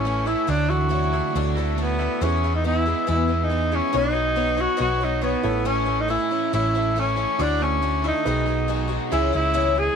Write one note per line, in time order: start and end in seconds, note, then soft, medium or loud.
0.00 0.33 A1 medium
0.00 0.29 C#4 medium
0.00 0.27 E4 medium
0.00 0.48 A4 medium
0.05 0.27 E3 medium
0.05 0.26 A3 medium
0.05 0.26 C#4 medium
0.05 0.24 E4 medium
0.25 0.47 A3 soft
0.25 0.48 C#4 soft
0.25 0.48 E4 soft
0.25 0.51 E4 medium
0.47 1.20 D2 loud
0.47 0.69 D3 medium
0.47 0.70 F#3 medium
0.47 0.70 A3 medium
0.47 0.69 D4 medium
0.47 0.71 D4 medium
0.47 0.67 E4 medium
0.68 1.78 E3 medium
0.68 0.89 A3 soft
0.68 0.90 D4 soft
0.68 0.90 E4 medium
0.68 1.56 F#4 medium
0.89 1.12 F#3 medium
0.89 1.12 A3 medium
0.89 1.13 D4 medium
0.89 1.11 E4 medium
1.13 1.35 A3 soft
1.13 1.35 D4 soft
1.13 1.35 E4 medium
1.35 2.06 D2 medium
1.35 1.57 D3 medium
1.35 1.57 F#3 medium
1.35 1.57 A3 medium
1.35 1.57 D4 medium
1.35 1.56 E4 medium
1.55 1.77 A3 soft
1.55 1.77 D4 medium
1.55 1.78 E4 medium
1.55 2.21 F#4 medium
1.78 2.00 F#3 medium
1.78 2.00 A3 medium
1.78 2.24 B3 medium
1.78 1.99 D4 medium
1.78 1.97 E4 medium
1.98 2.22 A3 soft
1.98 2.21 D4 soft
1.98 2.21 E4 soft
2.21 2.43 E2 medium
2.21 2.93 E2 medium
2.21 2.43 B2 medium
2.21 2.43 E3 medium
2.21 2.44 G#3 medium
2.21 2.43 B3 medium
2.21 3.92 B3 medium
2.21 2.55 C#4 medium
2.21 2.42 E4 medium
2.21 3.92 G#4 medium
2.21 3.92 B4 medium
2.44 2.63 E3 soft
2.44 2.63 G#3 soft
2.44 2.63 B3 soft
2.44 2.64 E4 soft
2.55 2.65 D#4 medium
2.64 2.86 E3 medium
2.64 2.86 G#3 medium
2.64 2.85 B3 medium
2.64 2.84 E4 medium
2.64 3.06 E4 medium
2.86 3.06 E3 soft
2.86 3.07 G#3 soft
2.86 3.07 B3 soft
2.86 3.07 E4 medium
3.07 3.29 E2 medium
3.07 3.79 E2 medium
3.07 3.29 B2 medium
3.07 3.29 E3 medium
3.07 3.28 G#3 medium
3.07 3.27 B3 medium
3.07 3.27 E4 medium
3.07 3.45 E4 medium
3.28 3.48 E3 soft
3.28 3.49 G#3 soft
3.28 3.50 B3 soft
3.28 3.50 E4 soft
3.28 3.95 G#4 medium
3.44 3.76 D#4 medium
3.49 3.72 E3 medium
3.49 3.71 G#3 medium
3.49 3.71 B3 medium
3.49 3.70 E4 medium
3.72 3.92 E3 soft
3.72 3.92 G#3 soft
3.72 3.91 B3 soft
3.72 3.99 C#4 medium
3.72 3.94 E4 soft
3.92 4.65 B1 medium
3.92 4.15 B3 medium
3.92 4.14 D#4 medium
3.92 5.42 D#4 medium
3.92 4.13 F#4 medium
3.92 5.42 B4 medium
3.92 4.11 C#5 medium
3.92 5.42 C#5 medium
3.98 4.62 D#4 loud
4.13 4.35 D#4 soft
4.13 4.35 F#4 soft
4.13 4.36 C#5 soft
4.36 4.58 B3 medium
4.36 4.58 D#4 medium
4.36 4.58 F#4 medium
4.36 4.56 C#5 medium
4.57 4.76 D#4 soft
4.57 4.77 F#4 soft
4.57 4.80 F#4 medium
4.57 4.77 C#5 medium
4.77 5.34 B1 medium
4.77 5.00 B3 medium
4.77 5.00 D#4 medium
4.77 5.00 F#4 medium
4.77 4.99 C#5 medium
4.81 5.06 F#4 loud
5.00 5.20 D#4 soft
5.00 5.21 F#4 medium
5.00 5.22 C#5 medium
5.04 5.24 D#4 medium
5.21 5.44 B3 medium
5.21 5.68 B3 medium
5.21 5.44 D#4 medium
5.21 5.44 F#4 medium
5.21 5.43 C#5 medium
5.43 6.16 A1 medium
5.43 5.65 A2 medium
5.43 5.64 A3 soft
5.43 5.64 C#4 soft
5.43 7.34 E4 medium
5.43 5.65 E4 medium
5.43 7.34 A4 medium
5.43 7.35 C#5 medium
5.65 5.88 A2 medium
5.65 5.88 E3 medium
5.65 5.86 A3 medium
5.65 5.85 C#4 medium
5.65 6.02 C#4 medium
5.65 5.84 E4 medium
5.86 6.07 A3 soft
5.86 6.08 C#4 soft
5.86 6.09 E4 medium
6.01 6.09 D#4 medium
6.08 6.31 E3 medium
6.08 6.31 A3 medium
6.08 6.31 C#4 medium
6.08 6.50 E4 medium
6.08 6.30 E4 medium
6.31 6.52 A3 soft
6.31 6.52 C#4 soft
6.31 6.53 E4 medium
6.53 7.24 A1 medium
6.53 6.75 A2 medium
6.53 6.75 E3 medium
6.53 6.75 A3 medium
6.53 6.75 C#4 medium
6.53 6.74 E4 medium
6.53 7.01 E4 medium
6.75 6.95 A3 soft
6.75 6.96 C#4 soft
6.75 6.96 E4 medium
6.96 7.18 E3 medium
6.96 7.17 A3 medium
6.96 7.16 C#4 medium
6.96 7.44 C#4 medium
6.96 7.15 E4 medium
7.16 7.38 A3 soft
7.16 7.39 C#4 soft
7.16 7.39 E4 soft
7.39 8.10 D2 loud
7.39 7.61 D3 medium
7.39 7.61 F#3 medium
7.39 7.61 A3 medium
7.39 7.61 D4 medium
7.39 7.64 D4 medium
7.39 8.24 E4 medium
7.39 7.60 E4 medium
7.39 8.24 F#4 medium
7.39 8.24 D6 medium
7.62 7.81 A3 soft
7.62 8.05 C#4 medium
7.62 7.81 D4 soft
7.62 7.83 E4 medium
7.82 8.04 F#3 medium
7.82 8.04 A3 medium
7.82 8.03 D4 medium
7.82 8.03 E4 medium
8.04 8.26 A3 soft
8.04 8.26 D4 medium
8.04 8.88 D#4 medium
8.04 8.26 E4 medium
8.25 8.97 B1 medium
8.25 8.47 B2 medium
8.25 8.48 D#3 medium
8.25 8.46 G#3 medium
8.25 9.10 D#4 medium
8.25 8.46 D#4 medium
8.25 8.45 F#4 medium
8.25 9.10 G#4 medium
8.25 9.10 B4 medium
8.46 8.67 G#3 soft
8.46 8.68 D#4 soft
8.46 8.68 F#4 soft
8.67 8.90 D#3 medium
8.67 9.11 F#3 medium
8.67 8.89 G#3 medium
8.67 8.88 D#4 medium
8.67 8.87 F#4 medium
8.88 9.11 G#3 soft
8.88 9.11 B3 medium
8.88 9.11 D#4 medium
8.88 9.11 F#4 medium
9.12 9.30 C#2 loud
9.12 9.33 C#3 medium
9.12 9.34 E3 medium
9.12 9.34 G#3 medium
9.12 9.33 C#4 medium
9.12 9.32 E4 loud
9.12 9.96 E4 medium
9.12 9.31 E4 medium
9.12 9.96 G#4 medium
9.12 9.96 C#5 medium
9.33 9.88 C#2 medium
9.33 9.53 G#3 soft
9.33 9.53 C#4 soft
9.33 9.54 E4 medium
9.33 9.80 E4 loud
9.54 9.76 C#3 medium
9.54 9.76 E3 medium
9.54 9.76 G#3 medium
9.54 9.75 C#4 medium
9.54 9.74 E4 medium
9.75 9.96 G#3 soft
9.75 9.96 C#4 soft
9.75 9.96 E4 medium
9.75 9.96 G#4 medium